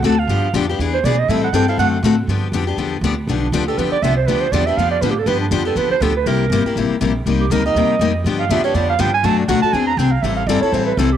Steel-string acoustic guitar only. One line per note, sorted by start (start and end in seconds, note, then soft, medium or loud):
0.04 0.14 D3 medium
0.04 0.15 A3 medium
0.04 0.15 C4 medium
0.04 0.15 F#4 loud
0.04 0.15 A4 medium
0.29 0.47 D3 medium
0.29 0.47 F3 medium
0.29 0.48 B3 medium
0.29 0.48 D4 medium
0.29 0.48 G4 medium
0.54 0.64 D3 medium
0.54 0.64 F3 medium
0.54 0.65 B3 medium
0.54 0.65 D4 loud
0.54 0.65 G4 loud
0.69 0.79 B3 medium
0.69 0.79 D4 medium
0.69 0.79 G4 medium
0.80 0.98 E3 medium
0.80 0.98 B3 medium
0.80 0.98 D4 medium
0.80 0.98 G#4 medium
1.05 1.15 E3 medium
1.05 1.15 B3 medium
1.05 1.15 D4 loud
1.05 1.15 G#4 loud
1.29 1.47 E3 medium
1.29 1.47 G3 medium
1.29 1.47 C4 medium
1.29 1.47 E4 medium
1.29 1.48 A4 medium
1.54 1.64 E3 medium
1.54 1.64 G3 loud
1.54 1.64 C4 medium
1.54 1.64 E4 medium
1.54 1.64 A4 loud
1.68 1.78 C4 medium
1.68 1.79 E4 medium
1.68 1.78 A4 medium
1.79 1.97 D3 medium
1.79 1.97 A3 medium
1.79 1.97 C4 medium
1.79 1.97 F#4 medium
1.79 1.97 A4 medium
2.04 2.14 D3 medium
2.04 2.14 A3 medium
2.04 2.14 C4 loud
2.04 2.14 F#4 loud
2.04 2.15 A4 loud
2.29 2.47 D3 medium
2.29 2.47 F3 medium
2.29 2.47 B3 medium
2.29 2.47 D4 medium
2.29 2.47 G4 medium
2.53 2.63 D3 medium
2.53 2.64 F3 medium
2.53 2.64 B3 medium
2.53 2.64 D4 medium
2.53 2.64 G4 loud
2.67 2.77 B3 soft
2.67 2.77 D4 soft
2.67 2.77 G4 medium
2.78 2.96 D3 medium
2.78 2.96 F3 medium
2.78 2.96 B3 medium
2.78 2.96 D4 medium
2.78 2.96 G4 medium
3.04 3.14 D3 medium
3.04 3.14 F3 medium
3.04 3.14 B3 medium
3.04 3.14 D4 medium
3.04 3.14 G4 loud
3.29 3.46 D3 medium
3.29 3.47 F3 medium
3.29 3.47 B3 medium
3.29 3.47 D4 medium
3.29 3.47 G4 medium
3.53 3.63 D3 medium
3.53 3.63 F3 loud
3.53 3.63 B3 loud
3.53 3.63 D4 loud
3.53 3.64 G4 loud
3.68 3.78 B3 soft
3.68 3.78 D4 soft
3.68 3.78 G4 medium
3.79 3.96 D3 medium
3.79 3.96 F3 medium
3.79 3.96 B3 medium
3.79 3.96 D4 medium
3.79 3.96 G4 medium
4.04 4.13 D3 medium
4.04 4.14 F3 medium
4.04 4.14 B3 medium
4.04 4.14 D4 medium
4.04 4.14 G4 medium
4.28 4.46 D3 medium
4.28 4.46 F3 medium
4.28 4.46 B3 medium
4.28 4.46 D4 medium
4.28 4.46 G4 medium
4.53 4.63 D3 medium
4.53 4.63 F3 medium
4.53 4.63 B3 medium
4.53 4.63 D4 loud
4.53 4.63 G4 loud
4.67 4.78 B3 soft
4.67 4.78 D4 soft
4.67 4.77 G4 medium
4.79 4.96 D3 medium
4.79 4.96 F3 medium
4.79 4.96 B3 medium
4.79 4.96 D4 medium
4.79 4.97 G4 medium
5.02 5.12 D3 medium
5.02 5.13 F3 medium
5.02 5.13 B3 medium
5.02 5.13 D4 medium
5.02 5.13 G4 medium
5.26 5.45 D3 medium
5.26 5.45 F3 medium
5.26 5.45 B3 medium
5.26 5.45 D4 medium
5.26 5.45 G4 medium
5.51 5.62 D3 medium
5.51 5.62 F3 medium
5.51 5.62 B3 medium
5.51 5.62 D4 medium
5.51 5.62 G4 loud
5.65 5.76 B3 soft
5.65 5.76 D4 medium
5.65 5.76 G4 medium
5.76 5.94 D3 medium
5.76 5.95 F3 medium
5.76 5.95 B3 medium
5.76 5.95 D4 medium
5.76 5.95 G4 medium
6.02 6.12 D3 medium
6.02 6.12 F3 medium
6.02 6.12 B3 medium
6.02 6.12 D4 loud
6.02 6.12 G4 medium
6.26 6.44 C3 medium
6.26 6.44 G3 medium
6.26 6.45 A#3 medium
6.26 6.45 E4 medium
6.26 6.45 G4 medium
6.52 6.62 C3 medium
6.52 6.62 G3 medium
6.52 6.62 A#3 medium
6.52 6.62 E4 medium
6.52 6.62 G4 loud
6.66 6.76 A#3 soft
6.66 6.76 E4 medium
6.66 6.76 G4 medium
6.77 6.94 C3 medium
6.77 6.95 G3 medium
6.77 6.95 A#3 medium
6.77 6.95 E4 medium
6.77 6.95 G4 medium
7.01 7.11 C3 medium
7.01 7.11 G3 medium
7.01 7.12 A#3 medium
7.01 7.12 E4 medium
7.01 7.12 G4 loud
7.26 7.44 C3 medium
7.26 7.44 G3 medium
7.26 7.44 A#3 medium
7.26 7.45 D#4 medium
7.26 7.45 G4 medium
7.51 7.61 C3 medium
7.51 7.61 G3 loud
7.51 7.61 A#3 loud
7.51 7.62 D#4 loud
7.51 7.62 G4 loud
7.66 7.76 A#3 soft
7.66 7.76 D#4 medium
7.66 7.75 G4 medium
7.76 7.94 C3 medium
7.76 7.94 G3 medium
7.76 7.94 A#3 medium
7.76 7.94 D#4 medium
7.76 7.94 G4 medium
8.01 8.11 C3 medium
8.01 8.11 G3 medium
8.01 8.11 A#3 medium
8.01 8.11 D#4 medium
8.01 8.11 G4 medium
8.26 8.44 D3 medium
8.26 8.44 F3 medium
8.26 8.44 B3 medium
8.26 8.44 D4 medium
8.26 8.44 G4 medium
8.50 8.60 D3 medium
8.50 8.61 F3 loud
8.50 8.61 B3 loud
8.50 8.61 D4 loud
8.50 8.61 G4 loud
8.64 8.74 B3 soft
8.64 8.74 D4 medium
8.64 8.74 G4 medium
8.75 8.93 D3 medium
8.75 8.93 F3 medium
8.75 8.93 B3 medium
8.75 8.93 D4 medium
8.75 8.93 G4 medium
8.99 9.09 D3 medium
8.99 9.10 F3 medium
8.99 9.10 B3 loud
8.99 9.10 D4 medium
8.99 9.10 G4 medium
9.24 9.42 B2 medium
9.24 9.42 F#3 medium
9.24 9.42 A3 medium
9.24 9.42 D4 medium
9.24 9.43 F#4 medium
9.49 9.59 B2 medium
9.49 9.59 F#3 loud
9.49 9.59 A3 medium
9.49 9.59 D4 loud
9.49 9.60 F#4 loud
9.63 9.74 A3 soft
9.63 9.73 D4 soft
9.63 9.73 F#4 medium
9.73 9.92 E3 medium
9.73 9.92 C4 medium
9.73 9.92 D4 medium
9.73 9.92 G#4 medium
9.99 10.09 E3 medium
9.99 10.09 C4 medium
9.99 10.10 D4 medium
9.99 10.10 G#4 medium
10.24 10.42 E3 medium
10.24 10.42 G3 medium
10.24 10.42 C4 medium
10.24 10.42 E4 medium
10.24 10.42 A4 medium
10.49 10.59 E3 loud
10.49 10.59 G3 medium
10.49 10.59 C4 loud
10.49 10.59 E4 loud
10.49 10.59 A4 loud
10.63 10.73 C4 soft
10.63 10.73 E4 medium
10.63 10.73 A4 medium
10.73 10.91 E3 medium
10.73 10.92 G3 medium
10.73 10.92 C4 medium
10.73 10.92 E4 medium
10.73 10.92 A4 medium
10.98 11.09 E3 medium
10.98 11.09 G3 medium
10.98 11.09 C4 medium
10.98 11.09 E4 medium
10.98 11.09 A4 loud